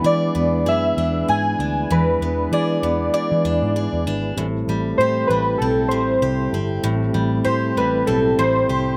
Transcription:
Already playing: E3 G#3 B3 D4 E4 B4
0.04 E3 G#4 D5
0.35 E2 B3
0.66 F#2 G#4 E5
0.97 E2 D4
1.28 G#2 G#4 G#5
1.59 D2 D4
1.91 E2 E3 B4
2.21 E2 B3
2.51 E3 G#4 D5
2.83 E2 B3
3.14 G#4 D5
3.32 E3
3.45 E2 D4
3.62 G#2
3.76 G#4
3.93 E2
4.06 G#1 D4
4.35 A1 A2 G3 C4 E4
4.40 A4
4.68 A1 G3
4.98 A2 G4 C5
5.27 A1 G3 B4
5.58 B1 C4 A4
5.88 A1 G3 C5
6.22 C2 G4
6.53 G1 C4
6.84 A1 A2
7.14 A1 G3
7.44 A2 G4 C5
7.77 A1 G3 B4
8.07 B1 C4 A4
8.39 A1 G3 C5
8.69 C2 G4

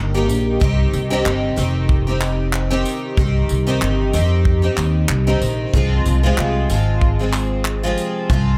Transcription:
Already playing: G1 A#3 D#4 G4
0.14 D#3 A#3 D#4 G4
0.29 A#1, tambourine
0.60 C2 D#3 C4 D#4 G4, kick
0.94 C2, tambourine
1.10 C3 D#3 C4 D#4 G4
1.26 G1, clap
1.56 F1 D#3 C4 D#4 G4, tambourine
1.89 kick
2.07 C4 D#4 G4
2.21 clap, tambourine
2.53 clap
2.71 C3 D#3 C4 D#4 G4
2.85 tambourine
3.17 C2 D#3 C4 D#4 G4, kick
3.49 C2, tambourine
3.67 C3 D#3 C4 D#4 G4
3.82 G1, clap
4.13 F2 D#3 C4 D#4 G4, tambourine
4.45 kick
4.62 C4 D#4 G4
4.77 D#2, clap, tambourine
5.09 C2, clap
5.27 C3 D#3 C4 D#4 G4
5.41 A#1, tambourine
5.74 C2 F3 G#3 C4 F4, kick
6.06 C2, tambourine
6.23 C3 F3 G#3 C4 F4
6.38 C2, clap
6.70 G#1 F3 G#3 C4 F4, tambourine
7.01 kick
7.19 G#3 C4 F4
7.33 clap, tambourine
7.65 clap
7.83 C3 F3 G#3 C4 F4
7.98 tambourine
8.30 C2 F3 G#3 C4 F4, kick

